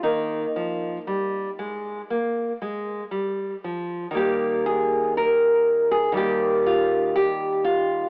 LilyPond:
\new Staff \with { instrumentName = "Nylon-string guitar" } { \time 4/4 \key ees \major \tempo 4 = 59 << { <bes ees'>2. r4 | g'8 aes'8 bes'8. aes'16 g'8 f'8 g'8 f'8 | } \\ { ees8 f8 g8 aes8 bes8 aes8 g8 f8 | <ees g bes>2 <ees g bes>2 | } >> }